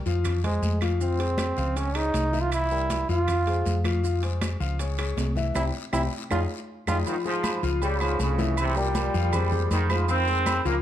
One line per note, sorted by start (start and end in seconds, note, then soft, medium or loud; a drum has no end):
0.06 0.59 F2 medium
0.06 0.37 F3 medium
0.06 0.37 F4 medium
0.06 0.38 F5 medium
0.06 high conga soft
0.06 short guiro medium
0.06 maracas soft
0.24 high conga soft
0.24 low conga medium
0.24 high timbale medium
0.24 long guiro medium
0.24 claves medium
0.24 maracas medium
0.44 0.75 G#3 medium
0.44 0.79 G#3 medium
0.44 0.75 G#4 medium
0.44 0.76 C5 medium
0.44 high conga soft
0.44 low conga medium
0.44 high timbale medium
0.44 maracas soft
0.62 1.51 F2 medium
0.62 high conga medium
0.62 short guiro medium
0.62 maracas medium
0.81 0.97 F3 medium
0.81 0.98 F4 medium
0.81 0.98 F5 medium
0.81 high conga medium
0.81 high timbale medium
0.81 short guiro medium
0.81 claves medium
0.81 maracas soft
1.01 1.17 F3 medium
1.01 1.79 C4 medium
1.01 1.17 F4 medium
1.01 1.17 F5 medium
1.01 long guiro medium
1.01 maracas medium
1.19 1.51 G#3 medium
1.19 1.51 G#4 medium
1.19 1.51 C5 medium
1.19 high conga soft
1.19 high timbale medium
1.19 maracas soft
1.38 high conga loud
1.38 high timbale medium
1.38 short guiro medium
1.38 claves medium
1.38 maracas medium
1.57 2.10 C#2 medium
1.57 1.73 F3 medium
1.57 1.73 F4 medium
1.57 1.73 F5 medium
1.57 high conga soft
1.57 short guiro medium
1.57 maracas soft
1.76 1.92 G#3 medium
1.76 1.98 C#4 loud
1.76 1.92 G#4 medium
1.76 1.92 C#5 medium
1.76 high conga soft
1.76 high timbale medium
1.76 long guiro medium
1.76 maracas medium
1.95 2.26 G#3 medium
1.95 2.42 D#4 loud
1.95 2.27 G#4 medium
1.95 2.27 C#5 medium
1.95 high conga soft
1.95 high timbale loud
1.95 claves medium
1.95 maracas soft
2.14 3.03 C2 medium
2.14 high conga medium
2.14 high timbale medium
2.14 short guiro medium
2.14 maracas medium
2.33 2.64 E3 medium
2.33 2.64 E4 medium
2.33 2.65 E5 medium
2.33 high conga medium
2.33 short guiro medium
2.33 maracas soft
2.41 2.53 F4 loud
2.52 3.06 E4 loud
2.52 high timbale medium
2.52 long guiro medium
2.52 claves medium
2.52 maracas medium
2.71 3.02 G3 medium
2.71 3.03 G4 medium
2.71 3.03 A#4 medium
2.71 high conga soft
2.71 maracas soft
2.90 high conga loud
2.90 high timbale medium
2.90 short guiro medium
2.90 maracas medium
3.09 3.62 F2 medium
3.09 3.40 F3 medium
3.09 3.40 F4 medium
3.09 3.81 F4 loud
3.09 3.41 F5 medium
3.09 high conga soft
3.09 short guiro medium
3.09 maracas soft
3.28 high conga soft
3.28 low conga medium
3.28 high timbale loud
3.28 long guiro medium
3.28 claves medium
3.28 maracas medium
3.47 3.78 G#3 medium
3.47 3.78 G#4 medium
3.47 3.78 C5 medium
3.47 high conga soft
3.47 high timbale medium
3.47 maracas soft
3.65 4.55 F2 medium
3.65 high conga medium
3.65 short guiro medium
3.65 maracas medium
3.84 4.00 F3 medium
3.84 4.00 F4 medium
3.84 4.01 F5 medium
3.84 high conga medium
3.84 high timbale medium
3.84 short guiro medium
3.84 claves medium
3.84 maracas soft
4.03 4.19 F3 medium
4.03 4.20 F4 medium
4.03 4.20 F5 medium
4.03 high conga soft
4.03 long guiro medium
4.03 maracas medium
4.23 4.54 G#3 medium
4.23 4.54 G#4 medium
4.23 4.54 C5 medium
4.23 high conga soft
4.23 high timbale medium
4.23 maracas soft
4.41 high conga loud
4.41 high timbale medium
4.41 short guiro medium
4.41 claves medium
4.41 maracas medium
4.60 5.13 C#2 medium
4.60 4.76 F3 medium
4.60 4.76 F4 medium
4.60 4.76 F5 medium
4.60 high conga soft
4.60 short guiro medium
4.60 maracas soft
4.79 4.95 G#3 medium
4.79 4.95 G#4 medium
4.79 4.95 C#5 medium
4.79 high conga soft
4.79 high timbale medium
4.79 long guiro medium
4.79 maracas medium
4.98 5.30 G#3 medium
4.98 5.30 G#4 medium
4.98 5.30 C#5 medium
4.98 high conga soft
4.98 high timbale loud
4.98 claves medium
4.98 maracas soft
5.17 5.52 C2 medium
5.17 high conga medium
5.17 high timbale medium
5.17 low timbale medium
5.17 short guiro medium
5.17 maracas medium
5.36 5.52 E3 medium
5.36 5.52 E4 medium
5.36 5.52 E5 medium
5.36 high conga medium
5.36 short guiro medium
5.36 maracas soft
5.54 5.69 C2 loud
5.54 5.68 C4 medium
5.54 5.65 E4 medium
5.54 5.68 E4 loud
5.54 5.68 G4 loud
5.54 high conga loud
5.54 high timbale loud
5.54 long guiro loud
5.54 claves medium
5.54 maracas loud
5.93 6.07 C2 loud
5.93 6.05 C4 medium
5.93 6.05 E4 loud
5.93 6.02 E4 medium
5.93 6.05 G4 loud
5.93 high conga loud
5.93 high timbale loud
5.93 long guiro loud
5.93 claves loud
5.93 maracas loud
6.31 6.45 F2 loud
6.31 6.43 D#4 loud
6.31 6.43 F4 loud
6.31 6.40 F4 medium
6.31 6.43 G#4 loud
6.31 high conga loud
6.31 high timbale loud
6.31 claves medium
6.31 maracas loud
6.87 7.02 F2 medium
6.87 7.00 D#4 loud
6.87 7.00 F4 loud
6.87 6.97 F4 loud
6.87 7.00 G#4 loud
6.87 high conga loud
6.87 high timbale loud
6.87 long guiro loud
6.87 claves loud
6.87 maracas loud
7.06 7.16 G#2 medium
7.06 7.15 D#3 loud
7.06 7.22 F3 medium
7.06 7.22 F4 medium
7.06 7.22 F5 medium
7.06 high conga soft
7.06 low agogo medium
7.06 long guiro medium
7.06 maracas medium
7.25 7.61 G#2 medium
7.25 7.61 F3 medium
7.25 7.56 G#3 medium
7.25 7.56 G#4 medium
7.25 7.57 C5 medium
7.25 high conga soft
7.25 maracas soft
7.43 high conga loud
7.43 low agogo loud
7.43 short guiro medium
7.43 claves medium
7.43 maracas medium
7.63 8.16 C#2 loud
7.63 7.79 F3 medium
7.63 7.79 F4 loud
7.63 7.79 F5 medium
7.63 high conga soft
7.63 short guiro medium
7.63 maracas soft
7.82 8.00 C#3 medium
7.82 8.00 G3 loud
7.82 7.98 G#3 medium
7.82 7.98 G#4 medium
7.82 7.98 C#5 medium
7.82 high conga soft
7.82 low agogo medium
7.82 long guiro medium
7.82 maracas medium
8.00 8.20 G#2 medium
8.00 8.20 F3 medium
8.00 8.32 G#3 medium
8.00 8.32 G#4 medium
8.00 8.33 C#5 medium
8.00 high conga soft
8.00 low agogo loud
8.00 claves medium
8.00 maracas soft
8.19 9.08 C2 loud
8.19 8.56 F2 medium
8.19 8.55 C#3 medium
8.19 high conga medium
8.19 low agogo medium
8.19 short guiro medium
8.19 maracas medium
8.38 8.69 E3 loud
8.38 8.70 E4 loud
8.38 8.70 E5 medium
8.38 high conga medium
8.38 short guiro medium
8.38 maracas soft
8.57 8.76 E2 medium
8.57 8.75 C3 loud
8.57 low agogo loud
8.57 long guiro medium
8.57 claves medium
8.57 maracas medium
8.76 9.71 A#2 medium
8.76 9.71 G3 loud
8.76 8.92 G3 medium
8.76 8.92 G4 medium
8.76 8.92 A#4 medium
8.76 high conga soft
8.76 maracas soft
8.95 9.11 G3 medium
8.95 9.11 G4 medium
8.95 9.11 A#4 medium
8.95 high conga loud
8.95 low agogo medium
8.95 short guiro medium
8.95 maracas medium
9.14 9.67 F2 loud
9.14 9.30 F3 loud
9.14 9.30 F4 loud
9.14 9.30 F5 loud
9.14 high conga soft
9.14 short guiro medium
9.14 maracas soft
9.33 9.49 G#3 medium
9.33 9.49 G#4 medium
9.33 9.49 C5 medium
9.33 high conga soft
9.33 low conga loud
9.33 low agogo loud
9.33 long guiro medium
9.33 claves medium
9.33 maracas medium
9.52 9.83 G#3 medium
9.52 9.83 G#4 medium
9.52 9.83 C5 medium
9.52 high conga soft
9.52 low conga medium
9.52 maracas soft
9.71 10.59 F2 loud
9.71 9.89 G#2 medium
9.71 9.89 D#3 loud
9.71 high conga medium
9.71 low agogo medium
9.71 short guiro medium
9.71 maracas medium
9.90 10.10 G#2 medium
9.90 10.09 F3 loud
9.90 10.05 G#3 medium
9.90 10.06 G#4 medium
9.90 10.06 C5 medium
9.90 high conga medium
9.90 low agogo loud
9.90 short guiro medium
9.90 claves medium
9.90 maracas soft
10.08 10.62 D#3 medium
10.08 10.24 F3 medium
10.08 10.62 C4 loud
10.08 10.24 F4 medium
10.08 10.24 F5 medium
10.08 high conga soft
10.08 low agogo medium
10.08 long guiro medium
10.08 maracas medium
10.27 10.59 G#3 medium
10.27 10.59 G#4 medium
10.27 10.59 C5 medium
10.27 high conga soft
10.27 maracas soft
10.46 high conga loud
10.46 low agogo loud
10.46 short guiro medium
10.46 claves medium
10.46 maracas medium
10.65 10.82 C#2 loud
10.65 10.75 C#3 medium
10.65 10.81 F3 loud
10.65 10.75 A#3 loud
10.65 10.81 F4 loud
10.65 10.81 F5 medium
10.65 high conga soft
10.65 short guiro medium
10.65 maracas soft